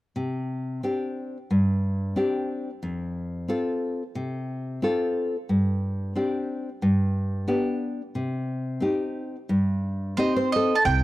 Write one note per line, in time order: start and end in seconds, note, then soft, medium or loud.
0.16 0.81 C3 soft
0.83 1.37 C4 soft
0.83 1.37 D4 soft
0.83 1.37 G4 soft
1.51 2.15 G2 soft
2.16 2.69 C4 soft
2.16 2.69 D4 soft
2.16 2.70 G4 soft
2.83 3.47 F2 soft
3.48 4.02 C4 soft
3.48 4.02 F4 soft
3.48 4.02 A4 soft
4.15 4.80 C3 soft
4.82 5.35 C4 soft
4.82 5.36 F4 soft
4.82 5.36 A4 soft
5.49 6.13 G2 soft
6.15 6.68 C4 soft
6.15 6.68 D4 soft
6.15 6.69 G4 soft
6.82 7.46 G2 soft
7.48 8.01 B3 soft
7.48 8.01 D4 soft
7.48 8.01 G4 soft
8.15 8.80 C3 soft
8.80 9.35 C4 soft
8.80 9.36 D#4 soft
8.80 9.36 G4 soft
9.49 10.15 G2 soft
10.17 10.72 C4 soft
10.17 10.73 D#4 soft
10.17 10.73 G4 soft
10.17 10.52 C5 medium
10.17 10.35 D#5 medium
10.36 10.53 C5 medium
10.52 10.84 A4 medium
10.52 10.76 D#5 medium
10.75 10.84 A5 medium
10.85 11.04 C2 medium
10.85 11.04 C3 soft
10.85 11.04 G5 medium